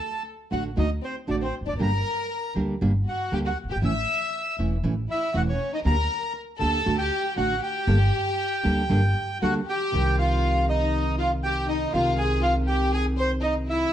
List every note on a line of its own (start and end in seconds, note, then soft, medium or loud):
0.00 0.23 A4 medium
0.00 0.23 A5 medium
0.51 0.73 A1 soft
0.51 0.69 D3 medium
0.51 0.69 A3 soft
0.51 0.69 D4 medium
0.51 0.63 F#4 medium
0.51 0.69 F#4 medium
0.51 0.64 F#5 medium
0.76 0.99 D2 medium
0.76 0.86 D3 medium
0.76 0.86 A3 medium
0.76 0.87 D4 medium
0.76 0.89 D#4 medium
0.76 0.87 F#4 medium
0.76 0.90 D#5 medium
1.03 1.15 C4 soft
1.03 1.16 C5 medium
1.27 1.50 A1 soft
1.27 1.45 D3 medium
1.27 1.46 A3 medium
1.27 1.46 D4 soft
1.27 1.34 D4 medium
1.27 1.46 F#4 medium
1.27 1.36 D5 medium
1.41 1.53 C4 medium
1.41 1.55 C5 medium
1.61 1.66 E1 soft
1.67 1.73 F1 soft
1.67 1.73 D4 medium
1.67 1.74 D5 medium
1.74 1.79 F#1 medium
1.79 2.01 G1 medium
1.79 1.89 D3 medium
1.79 1.89 G3 medium
1.79 1.89 A#3 medium
1.79 1.89 D4 medium
1.79 1.90 G4 medium
1.79 2.53 A#4 medium
1.79 2.54 A#5 medium
2.55 2.78 D2 soft
2.55 2.73 D3 soft
2.55 2.73 G3 soft
2.55 2.74 A#3 soft
2.55 2.74 D4 medium
2.55 2.74 G4 medium
2.81 3.03 G1 medium
2.81 2.91 D3 medium
2.81 2.91 G3 medium
2.81 2.91 A#3 medium
2.81 2.91 D4 medium
2.81 2.91 G4 medium
3.08 3.31 F#4 medium
3.08 3.34 F#5 medium
3.32 3.54 D2 medium
3.32 3.49 D3 medium
3.32 3.50 G3 medium
3.32 3.50 A#3 medium
3.32 3.50 D4 medium
3.32 3.50 G4 medium
3.32 3.39 G4 medium
3.32 3.39 G5 medium
3.46 3.57 F#4 medium
3.46 3.58 F#5 medium
3.64 3.69 F#1 soft
3.70 3.75 G1 soft
3.70 3.76 G4 medium
3.70 3.78 G5 medium
3.76 3.81 G#1 medium
3.82 4.04 A1 medium
3.82 3.92 E3 medium
3.82 3.92 A3 medium
3.82 3.92 C#4 medium
3.82 3.93 E4 medium
3.82 4.54 E5 medium
3.82 4.56 E6 medium
4.59 4.80 E1 medium
4.59 4.76 E3 medium
4.59 4.76 A3 medium
4.59 4.76 C#4 medium
4.59 4.77 E4 medium
4.84 5.05 A1 medium
4.84 4.93 E3 medium
4.84 4.93 A3 medium
4.84 4.93 C#4 medium
4.84 4.93 E4 medium
5.11 5.34 E4 medium
5.11 5.36 E5 medium
5.34 5.56 E1 medium
5.34 5.52 E3 medium
5.34 5.52 A3 medium
5.34 5.52 C#4 medium
5.34 5.52 E4 medium
5.34 5.40 F#4 medium
5.34 5.42 F#5 medium
5.48 5.71 C#4 medium
5.48 5.72 C#5 medium
5.73 5.79 D#4 medium
5.73 5.80 D#5 medium
5.85 6.07 D2 medium
5.85 5.94 D3 medium
5.85 5.94 A#3 medium
5.85 5.95 D4 medium
5.85 5.95 G4 medium
5.85 6.32 A#4 medium
5.85 6.33 A#5 medium
6.59 6.83 D2 medium
6.59 6.77 D3 medium
6.59 6.78 A#3 medium
6.59 6.78 D4 medium
6.59 6.78 G4 medium
6.59 6.96 A4 medium
6.59 6.96 A5 medium
6.85 7.08 D2 medium
6.85 6.95 D3 medium
6.85 6.95 A3 medium
6.85 6.95 D4 medium
6.85 6.96 F#4 medium
6.98 7.35 G4 medium
6.98 7.34 G5 medium
7.36 7.59 A1 medium
7.36 7.54 D3 medium
7.36 7.54 A3 medium
7.36 7.54 D4 medium
7.36 7.61 F#4 medium
7.36 7.55 F#4 medium
7.36 7.61 F#5 medium
7.63 9.38 G4 medium
7.63 9.38 G5 medium
7.87 8.09 G1 medium
7.87 7.97 D3 medium
7.87 7.97 G3 medium
7.87 7.97 A#3 medium
7.87 7.97 D4 medium
7.87 7.97 A4 medium
8.63 8.86 D2 medium
8.63 8.81 D3 medium
8.63 8.82 G3 medium
8.63 8.82 A#3 medium
8.63 8.82 D4 medium
8.63 8.82 A4 medium
8.89 9.12 G1 medium
8.89 8.99 D3 medium
8.89 8.99 G3 medium
8.89 8.99 A#3 medium
8.89 8.99 D4 medium
8.89 8.99 A4 medium
9.42 9.64 D2 medium
9.42 9.59 D3 medium
9.42 9.60 G3 medium
9.42 9.60 A#3 medium
9.42 9.60 D4 medium
9.42 9.53 F#4 medium
9.42 9.54 F#4 medium
9.42 9.60 A4 medium
9.42 9.54 F#5 medium
9.67 10.15 G4 medium
9.67 10.16 G4 medium
9.67 10.16 G5 medium
9.92 11.85 C2 medium
9.92 11.92 C3 medium
9.92 11.92 D#3 medium
9.92 11.93 G3 medium
9.92 11.95 C4 medium
9.92 11.94 G4 medium
10.18 10.65 F4 medium
10.18 10.66 F4 medium
10.18 10.65 F5 medium
10.69 11.16 D#4 medium
10.69 11.16 D#5 medium
11.18 11.30 F4 medium
11.18 11.32 F4 medium
11.18 11.31 F5 medium
11.43 11.68 G4 medium
11.43 11.67 G5 medium
11.68 11.92 D#4 medium
11.68 11.93 D#4 medium
11.68 11.92 D#5 medium
11.93 13.84 C2 medium
11.93 13.92 C3 medium
11.93 13.91 D#3 medium
11.93 13.92 G#3 medium
11.93 13.93 C4 medium
11.93 12.17 F4 medium
11.93 12.18 F4 medium
11.93 13.93 F4 medium
11.93 12.20 F5 medium
12.18 12.42 G#4 medium
12.18 12.42 G#5 medium
12.41 12.53 F4 medium
12.41 12.55 F4 medium
12.41 12.54 F5 medium
12.67 12.91 G4 medium
12.67 12.92 G4 medium
12.67 12.91 G5 medium
12.92 13.04 G#4 medium
12.92 13.06 G#4 medium
12.92 13.05 G#5 medium
13.17 13.29 C5 medium
13.17 13.32 C5 medium
13.17 13.30 C6 medium
13.41 13.53 D#4 medium
13.41 13.56 D#4 medium
13.41 13.54 D#5 medium
13.68 13.93 E4 medium
13.68 13.93 E5 medium
13.72 13.93 E4 medium